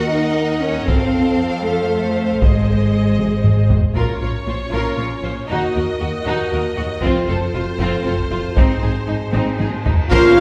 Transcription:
Already playing: D#2 A#4 D#5 F#5
0.11 D#4
0.63 C#4
0.87 F2 C4 A4 C5 F5, taiko
1.65 A3
2.42 G#1 G#3 G#4 D#5, taiko
3.19 taiko low-mid
3.44 taiko low-mid
3.70 taiko low
3.95 A#1 A#2 C#4 F4 A#4 C#5, taiko
4.21 A#1 A#2 F4 C#5
4.46 A#1 A#2 F4 C5
4.72 A#1 A#2 F4 A#4
4.97 A#1 A#2 F4 C#5
5.23 A#1 A#2 F4 C5
5.48 D#2 A#3 D#4 F#4 A#4 D#5
5.75 D#2 F#4 A#4
6.00 D#2 F#4
6.24 D#2 D#4 F#4
6.51 D#2 F#4 A#4
6.76 D#2 F#4
7.01 F1 F2 C4 F4 A4 C5, taiko
7.28 F1 F2 F4 A4
7.54 F1 F2 F4
7.79 F1 F2 C4 F4
8.05 F1 F2 F4 A4
8.19 taiko
8.31 F1 F2 F4
8.57 G#1 G#2 C4 D#4 G#4, taiko
8.82 G#1 G#2 D#4 G#4
9.07 G#1 G#2 D#4
9.33 G#1 G#2 C4 D#4, taiko high
9.58 G#1 G#2 D#4 G#4, taiko high
9.84 G#1 G#2 D#4, taiko low
10.09 A#1 A#2 F4 A#4 C5 C#5 F5, taiko, tam-tam
10.35 A#1 C#5 F5

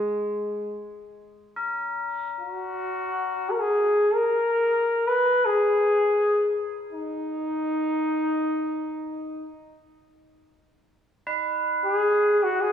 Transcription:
Already playing: G#3
1.56 A#4
2.40 F#4
3.51 A#4
3.60 G#4
4.14 A#4
5.07 B4
5.45 G#4
6.92 D#4
11.27 B4
11.85 G#4
12.43 F#4
12.61 G#4

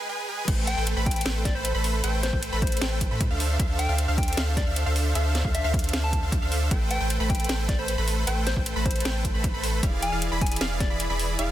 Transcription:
0.09 G#3 G#4 B4 G#5
0.28 G#3 G#4 B4 G#5
0.48 A1 A3 A4 B4 C5 G5, kick, closed hi-hat, crash
0.67 G5, closed hi-hat
0.77 A1 A3 A4 B4 C5 G5
0.87 closed hi-hat
0.97 A1 A3 A4 B4 C5 B5
1.06 G5, kick, closed hi-hat
1.11 closed hi-hat
1.16 G5, closed hi-hat
1.21 closed hi-hat
1.26 A1 A3 A4 B4 C5 G5, snare, closed hi-hat
1.45 D5, kick, snare, closed hi-hat
1.55 A1 A3 A4 B4 C5 B5
1.65 closed hi-hat
1.75 A1 A3 A4 B4 C5 B5
1.84 open hi-hat
2.04 A1 A3 A4 B4 C5 G5, closed hi-hat
2.23 C5, snare, closed hi-hat
2.33 A1 A3 A4 B4 C5 G5, kick
2.43 closed hi-hat
2.52 A1 A3 A4 B4 C5 B5
2.62 C5, kick, closed hi-hat
2.67 closed hi-hat
2.72 closed hi-hat
2.77 closed hi-hat
2.82 A1 A3 A4 B4 C5 G5, snare, closed hi-hat
3.01 kick, closed hi-hat
3.11 A2 A3 A4 B4 C5 B5
3.21 kick, closed hi-hat
3.30 D2 D4 A4 C5 E5 F5
3.40 open hi-hat
3.59 D2 D4 A4 C5 E5 F5, kick, closed hi-hat
3.79 G5, closed hi-hat
3.89 D2 D4 A4 C5 E5 F5
3.98 closed hi-hat
4.08 D2 D4 A4 C5 E5 F5
4.18 G5, kick, closed hi-hat
4.23 closed hi-hat
4.28 G5, closed hi-hat
4.33 closed hi-hat
4.37 D2 D4 A4 C5 E5 F5, snare, closed hi-hat
4.57 D5, kick, snare, closed hi-hat
4.67 D2 D4 A4 C5 E5 F5
4.76 closed hi-hat
4.86 D2 D4 A4 C5 E5 F5
4.96 open hi-hat
5.15 D2 D4 A4 C5 E5 F5, closed hi-hat
5.35 snare, closed hi-hat
5.45 D2 D4 A4 C5 E5 F5, kick
5.55 E5, closed hi-hat
5.64 D2 D4 A4 C5 E5 F5
5.74 kick, closed hi-hat
5.79 closed hi-hat
5.84 closed hi-hat
5.89 closed hi-hat
5.93 D2 D4 A4 C5 E5 F5, snare, closed hi-hat
6.04 A5
6.13 kick, closed hi-hat
6.23 D2 D4 A4 C5 E5 F5
6.32 kick, closed hi-hat
6.42 D2 D4 A4 C5 E5 F5
6.52 open hi-hat
6.71 A1 A3 A4 B4 C5 G5, kick, closed hi-hat
6.91 G5, closed hi-hat
7.00 A1 A3 A4 B4 C5 G5
7.10 closed hi-hat
7.20 A1 A3 A4 B4 C5 B5
7.30 G5, kick, closed hi-hat
7.35 closed hi-hat
7.40 G5, closed hi-hat
7.44 closed hi-hat
7.49 A1 A3 A4 B4 C5 G5, snare, closed hi-hat
7.69 D5, kick, snare, closed hi-hat
7.79 A1 A3 A4 B4 C5 B5
7.88 closed hi-hat
7.98 A1 A3 A4 B4 C5 B5
8.08 open hi-hat
8.27 A1 A3 A4 B4 C5 G5, closed hi-hat
8.47 C5, snare, closed hi-hat
8.56 A1 A3 A4 B4 C5 G5, kick
8.66 closed hi-hat
8.76 A1 A3 A4 B4 C5 B5
8.86 C5, kick, closed hi-hat
8.91 closed hi-hat
8.96 closed hi-hat
9.00 closed hi-hat
9.05 A1 A3 A4 B4 C5 G5, snare, closed hi-hat
9.24 kick, closed hi-hat
9.34 A1 A3 A4 B4 C5 B5
9.44 kick, closed hi-hat
9.54 A1 A3 A4 B4 C5 B5
9.64 open hi-hat
9.83 E1 E3 E4 G#4 D5 F5, kick, closed hi-hat
10.02 G#5, closed hi-hat
10.12 E1 E3 E4 G#4 D5 F5
10.22 closed hi-hat
10.32 E1 E3 E4 G#4 D5 B5
10.41 G#5, kick, closed hi-hat
10.46 closed hi-hat
10.51 G#5, closed hi-hat
10.56 closed hi-hat
10.61 E1 E3 E4 G#4 D5 F5, snare, closed hi-hat
10.80 D5, kick, snare, closed hi-hat
10.90 E1 E3 E4 G#4 D5 B5
11.00 closed hi-hat
11.10 E1 E3 E4 G#4 D5 B5
11.20 open hi-hat
11.39 E1 E3 E4 G#4 D5 F5, closed hi-hat

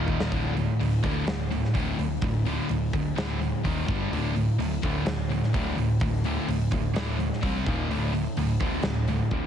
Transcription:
Already playing: D#1 D#2 A#2 D#3 D#4 A#4 F5
0.08 kick
0.20 snare
0.32 D1 D2 A2 D3, kick, open hi-hat
0.55 D2 A2, open hi-hat
0.80 D1 D2 A2, open hi-hat
1.03 D2 A2 D3, kick, open hi-hat
1.26 D1 D2 A2, snare, open hi-hat
1.50 D2 A2, open hi-hat
1.65 snare
1.74 D1 D2 A2 D3, kick, open hi-hat
1.99 D1 D2 A2, open hi-hat
2.22 D1 D2 A2, kick, open hi-hat
2.45 D2 A2 D3, open hi-hat
2.69 D1 D2 A2, open hi-hat
2.93 D2 A2, kick, open hi-hat
3.15 D1 D2 A2 D3, snare, open hi-hat
3.40 D2 A2, open hi-hat
3.64 D#1 D#2 A#2 D#3, kick, open hi-hat
3.86 G1 G2 D3 G3, kick, open hi-hat
4.11 D1 D2 A2 D3, open hi-hat
4.34 D2 A2, open hi-hat
4.59 D1 D2 A2, open hi-hat
4.82 D2 A2 D3, kick, open hi-hat
5.06 D1 D2 A2, snare, open hi-hat
5.29 D2 A2, open hi-hat
5.44 snare
5.53 D1 D2 A2 D3, kick, open hi-hat
5.77 D1 D2 A2, open hi-hat
6.00 D1 D2 A2, kick, open hi-hat
6.24 D2 A2 D3, open hi-hat
6.48 D1 D2 A2, open hi-hat
6.71 D2 A2, kick, open hi-hat
6.94 D1 D2 A2 D3, snare, open hi-hat
7.19 D2 A2, open hi-hat
7.33 snare
7.41 C2 C3 G3 C4, kick, open hi-hat
7.66 D#1 D#2 A#2 D#3, kick, open hi-hat
7.89 D1 D2 A2 D3, open hi-hat
8.13 D2 A2, open hi-hat
8.37 D1 D2 A2, open hi-hat
8.60 D2 A2 D3, kick, open hi-hat
8.83 D1 D2 A2, snare, open hi-hat
9.08 D2 A2, open hi-hat
9.31 D1 D2 A2 D3, kick, open hi-hat

